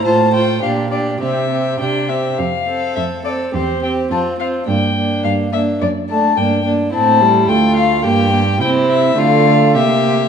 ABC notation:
X:1
M:2/4
L:1/8
Q:1/4=105
K:F
V:1 name="Violin"
a g f d | e2 g e | f2 e d | c g a f |
g2 f e | d a g z | a2 g f | g2 g e |
f2 e2 |]
V:2 name="Violin"
c c G G | G G G G | z A2 A | G G F F |
D D2 D | z D D D | E2 F2 | G2 E2 |
F2 G2 |]
V:3 name="Viola"
F F D D | C C D C | z C2 C | C C C C |
B, B,2 B, | z A, B, B, | C G, A,2 | B, B, C2 |
A,2 B,2 |]
V:4 name="Cello" clef=bass
A,,2 B,,2 | C,2 C,2 | F,,2 F,,2 | E,,2 F,,2 |
G,,2 G,,2 | ^F,,2 G,,2 | A,,2 D,,2 | G,,2 C,2 |
D,2 C,2 |]